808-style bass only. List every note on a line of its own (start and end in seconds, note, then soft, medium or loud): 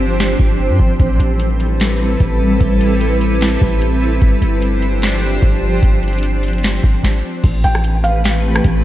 0.00 0.35 G1 loud
0.39 0.71 G1 loud
0.69 0.79 G2 loud
0.79 0.99 G1 loud
1.00 1.19 A1 loud
1.19 2.16 A1 loud
2.20 2.59 A1 loud
2.61 3.57 A1 loud
3.62 4.19 A1 loud
4.22 4.41 G1 loud
4.42 5.38 G1 loud
5.42 5.81 G1 loud
5.83 6.79 G1 loud
6.84 7.03 G1 loud
7.44 7.63 A1 loud
7.64 8.61 A1 loud
8.64 8.84 A1 loud